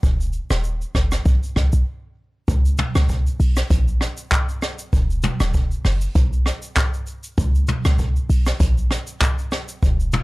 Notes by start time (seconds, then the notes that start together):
0.03 D#1, kick, shaker
0.20 shaker
0.33 shaker
0.50 D#1, cross-stick, shaker
0.64 shaker
0.82 shaker
0.95 F#1, kick, cross-stick, shaker
1.11 cross-stick, shaker
1.25 B1, kick, shaker
1.43 shaker
1.56 C#2, kick, cross-stick, shaker
1.72 B1, shaker
2.48 C#2, kick, shaker
2.65 shaker
2.77 mid tom, shaker
2.95 C#2, cross-stick, shaker
3.09 kick, shaker
3.27 shaker
3.40 B1, open hi-hat, shaker
3.56 cross-stick, shaker
3.70 A#1, kick, hi-hat pedal, shaker
3.88 shaker
4.01 cross-stick, shaker
4.17 shaker
4.32 kick, clap, shaker
4.49 shaker
4.62 cross-stick, shaker
4.79 shaker
4.93 D#1, kick, shaker
5.10 shaker
5.22 mid tom, shaker
5.40 D#1, cross-stick, shaker
5.54 kick, shaker
5.71 shaker
5.85 F#1, cross-stick, open hi-hat, shaker
6.01 shaker
6.15 B1, kick, hi-hat pedal, shaker
6.33 shaker
6.46 cross-stick, shaker
6.62 shaker
6.77 kick, cross-stick, clap, shaker
6.94 shaker
7.07 shaker
7.23 shaker
7.38 C#2, kick, shaker
7.55 shaker
7.67 mid tom, shaker
7.85 C#2, cross-stick, shaker
7.98 kick, shaker
8.16 shaker
8.30 B1, open hi-hat, shaker
8.46 cross-stick, shaker
8.60 A#1, kick, hi-hat pedal, shaker
8.78 shaker
8.91 cross-stick, shaker
9.07 shaker
9.21 kick, clap, shaker
9.38 shaker
9.51 cross-stick, shaker
9.68 shaker
9.83 D#1, kick, shaker
10.00 shaker
10.12 mid tom, shaker